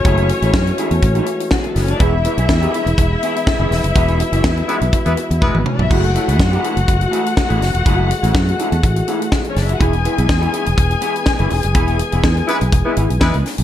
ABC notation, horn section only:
X:1
M:4/4
L:1/16
Q:1/4=123
K:Emix
V:1 name="Horn section"
z16 | z16 | z6 [G,B,EB] z2 [G,B,EB] z2 [G,B,EB]2 z2 | z16 |
z16 | z16 | z6 [G,B,EB] z2 [G,B,EB] z2 [G,B,EB]2 z2 |]